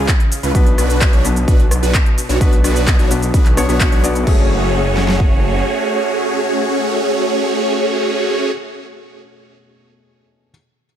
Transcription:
Already playing: C#3 G#3 C#4 F4 G#4
0.08 kick, clap, closed hi-hat, shaker
0.20 closed hi-hat
0.32 open hi-hat, shaker
0.43 C#2 C#4 F4 B4, closed hi-hat, shaker
0.54 B1 B2 B3 D4 F#4 B4, kick, closed hi-hat, shaker
0.66 closed hi-hat
0.78 B1 D4 F#4 B4, cross-stick, open hi-hat, shaker
0.90 closed hi-hat, shaker
1.01 kick, clap, closed hi-hat, shaker
1.13 B1 D4 F#4 C#5, closed hi-hat
1.24 B2 B3 D4 F#4 B4, open hi-hat, shaker
1.36 closed hi-hat, shaker
1.48 B1 D4 F#4 B4, kick, closed hi-hat, shaker
1.60 closed hi-hat
1.71 cross-stick, open hi-hat, shaker
1.83 B1 D4 F#4 B4, closed hi-hat, shaker
1.94 kick, clap, closed hi-hat, shaker
2.06 closed hi-hat
2.18 open hi-hat, shaker
2.29 B1 D4 F#4 C#5, closed hi-hat, shaker
2.40 B1 B2 B3 D4 F#4 B4, kick, closed hi-hat, shaker
2.53 closed hi-hat
2.64 B1 D4 F#4 B4, cross-stick, open hi-hat, shaker
2.76 closed hi-hat, shaker
2.87 kick, clap, closed hi-hat, shaker
2.99 B1 D4 F#4 C#5, closed hi-hat
3.10 B2 B3 D4 F#4 B4, open hi-hat, shaker
3.22 closed hi-hat, shaker
3.34 B1 D4 F#4 B4, kick, closed hi-hat, shaker
3.46 clap, closed hi-hat
3.57 B1 B2 B3 D4 F#4 C#5, cross-stick, open hi-hat, shaker
3.68 B1 B2 B3 D4 F#4 B4 C#5, closed hi-hat, shaker
3.80 kick, clap, closed hi-hat, shaker
3.92 B1 D4 F#4 C#5, closed hi-hat
4.03 B3 D4 F#4 D5, open hi-hat, shaker
4.15 closed hi-hat, shaker
4.25 F#1 A3 C#4 F#4 G#4 C#5, kick, crash
4.97 snare
5.08 snare
5.20 kick

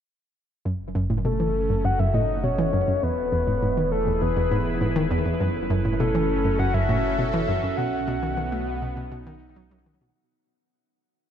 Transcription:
0.65 F#1 F#2 C#4
0.95 F#2
1.10 A2
1.24 B2 F#4 A4
1.40 E3
1.70 F#2 A4
1.84 F#2 F#5
1.99 F#2 E5
2.14 A2 D#5
2.44 B2 C#5
2.58 E3
2.73 F#2
2.88 F#2
3.03 E1 E2 E3 B4
3.25 B4
3.32 E2
3.38 E4 G#4
3.47 G#2
3.62 G#2 B5
3.77 D#3
3.92 A4
4.07 E2
4.22 E2 B4
4.37 E2
4.51 G#2
4.81 G#2
4.96 D#3
5.11 E2
5.26 E2
5.40 F#1 F#2 C#4
5.70 F#2
5.85 A2
5.91 F#4
6.00 B2 A4
6.15 E3
6.45 F#2 A4
6.59 F#2 F#5
6.74 F#2 E5
6.89 A2
7.19 B2
7.34 E3
7.47 F#2 E5
7.63 F#2
7.77 B1 B2 F#5
8.02 B3
8.08 B2
8.23 D#3
8.37 D#3
8.52 A3
8.82 B2 D#4
8.97 B2
9.12 B2
9.27 D#3
9.56 F#3
9.71 F#3
9.86 D#3
10.01 B2

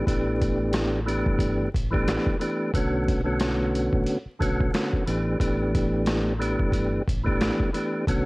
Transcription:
0.06 A1 E3 A3 B3 D4 G4, kick, closed hi-hat
0.42 kick, closed hi-hat
0.73 snare, closed hi-hat
1.06 E3 A3 B3 D4 G4, closed hi-hat
1.26 G1, kick
1.39 kick, closed hi-hat
1.74 A1, kick, closed hi-hat
1.90 E3 A3 B3 D4 G4, kick
2.08 snare, closed hi-hat
2.26 kick
2.39 E3 A3 B3 D4 G4, closed hi-hat
2.74 B1 D3 A3 B3 C#4 F#4, kick, closed hi-hat
3.08 kick, closed hi-hat
3.24 D3 A3 B3 C#4 F#4
3.39 D3 A3 B3 C#4 F#4, snare, closed hi-hat
3.75 closed hi-hat
3.93 A1, kick
4.07 closed hi-hat
4.26 muted fingered electric bass stroke
4.39 B1 D3 A3 B3 C#4 F#4, kick, closed hi-hat
4.61 kick
4.72 D3 A3 B3 C#4 F#4, snare, closed hi-hat
4.93 kick
5.06 A1 E3 A3 B3 D4 G4, closed hi-hat
5.39 A1 E3 A3 B3 D4 G4, kick, closed hi-hat
5.75 kick, closed hi-hat
6.06 snare, closed hi-hat
6.39 E3 A3 B3 D4 G4, closed hi-hat
6.59 G1, kick
6.72 kick, closed hi-hat
7.07 A1, kick, closed hi-hat
7.23 E3 A3 B3 D4 G4, kick
7.41 snare, closed hi-hat
7.60 kick
7.73 E3 A3 B3 D4 G4, closed hi-hat
8.07 B1 D3 A3 B3 C#4 F#4, kick, closed hi-hat

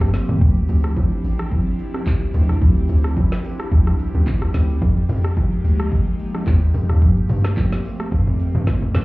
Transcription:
Already playing: F3 A3 A#3 C4 G4
0.01 G2, kick, cross-stick, shaker
0.14 snare, open hi-hat, shaker
0.29 F2, mid tom, shaker
0.41 D2 D4 E4, kick, low conga, shaker
0.56 shaker
0.69 D2, open hi-hat, high bongo, shaker
0.84 cross-stick, shaker
0.96 kick, high bongo, low conga, shaker
1.12 shaker
1.24 A1, open hi-hat, shaker
1.39 cross-stick, shaker
1.51 kick, low conga, shaker
1.66 shaker
1.79 open hi-hat, shaker
1.94 cross-stick, low bongo, shaker
2.06 C2, kick, clap, high bongo, shaker
2.22 shaker
2.34 D2, open hi-hat, low bongo, shaker
2.49 C2, cross-stick, shaker
2.62 D2, kick, low conga, shaker
2.76 shaker
2.89 D2, open hi-hat, high bongo, shaker
3.04 cross-stick, shaker
3.17 kick, high bongo, low conga, shaker
3.32 snare, shaker
3.45 open hi-hat, shaker
3.60 cross-stick, shaker
3.71 D2, kick, low conga, shaker
3.86 C2, cross-stick, shaker
3.99 open hi-hat, shaker
4.14 D2, low bongo, shaker
4.27 kick, clap, high bongo, shaker
4.42 C2, cross-stick, shaker
4.54 D2, snare, open hi-hat, low bongo, shaker
4.69 shaker
4.82 F2 G#3 A#3 D#4, kick, low conga, shaker
4.97 shaker
5.09 F2, open hi-hat, high bongo, shaker
5.24 cross-stick, shaker
5.37 kick, high bongo, low conga, shaker
5.52 shaker
5.64 D2, open hi-hat, shaker
5.79 cross-stick, shaker
5.91 kick, low conga, shaker
6.06 shaker
6.19 open hi-hat, shaker
6.34 cross-stick, low bongo, shaker
6.47 D#2, kick, clap, high bongo, shaker
6.62 shaker
6.74 F2, open hi-hat, low bongo, shaker
6.89 D#2, cross-stick, shaker
7.02 G2 A3 A#3 C4, kick, low conga, shaker
7.16 shaker
7.29 G2, open hi-hat, high bongo, shaker
7.44 cross-stick, snare, shaker
7.57 kick, clap, high bongo, low conga, shaker
7.72 snare, shaker
7.85 open hi-hat, shaker
8.00 cross-stick, shaker
8.11 G2, kick, low conga, shaker
8.27 F2, shaker
8.40 open hi-hat, shaker
8.55 G2, low bongo, shaker
8.67 kick, snare, high bongo, shaker
8.82 F2, shaker
8.94 G2, snare, open hi-hat, low bongo, shaker

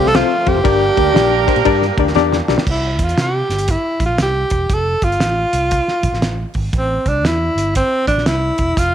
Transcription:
Already playing: C2 F3 A3 C4 F4 C5
0.06 A4, snare
0.15 C4 F4 A4 C5, snare, ride
0.46 F2 C4 F4 G4 A4 C5, kick, ride
0.55 F#1
0.64 G1 G2 G3 A#3 D4 G4 A#4 D5, kick, ride
0.97 D2 D4 G4 A#4 D5, kick, ride
1.14 A#1 D4 G4 A#4 D5, snare, ride
1.47 D4 G4 A#4 C5, kick, ride
1.56 A#2, ride
1.65 G2 D4 G4 A#4 D5, kick, ride
1.82 snare
1.97 D2 D4 G4 A#4 D5, kick, ride
2.08 snare
2.15 E2 D4 G4 A#4 D5, snare
2.33 snare
2.48 B1 D4 G4 A#4 D5, snare
2.58 snare
2.67 C2 E4, kick, crash
2.99 E2, kick, closed hi-hat
3.03 F4
3.09 closed hi-hat
3.18 C3 G4, snare, closed hi-hat
3.49 G1, snare, closed hi-hat
3.59 closed hi-hat
3.68 E4, kick, closed hi-hat
4.00 A1, kick, closed hi-hat
4.05 A#1 F4
4.18 C2 G4, snare, closed hi-hat
4.50 E1, kick, closed hi-hat
4.69 F1, kick, closed hi-hat
4.74 A4
5.02 G1 F4, kick, closed hi-hat
5.12 closed hi-hat
5.20 A1, snare, closed hi-hat
5.53 C2, closed hi-hat
5.71 kick, closed hi-hat
5.88 snare
6.03 A#1, kick, closed hi-hat
6.12 A1, snare
6.22 snare, closed hi-hat
6.54 G#1, kick, open hi-hat
6.73 A1, kick, closed hi-hat
6.77 C4
7.06 C2 D4, kick, closed hi-hat
7.24 E2 E4, snare, closed hi-hat
7.55 G1, closed hi-hat
7.75 C4, kick, closed hi-hat
8.07 A1 D4, kick, closed hi-hat
8.16 A#1, snare
8.26 C2 E4, snare, closed hi-hat
8.58 E1, kick, closed hi-hat
8.77 F1 F4, kick, closed hi-hat

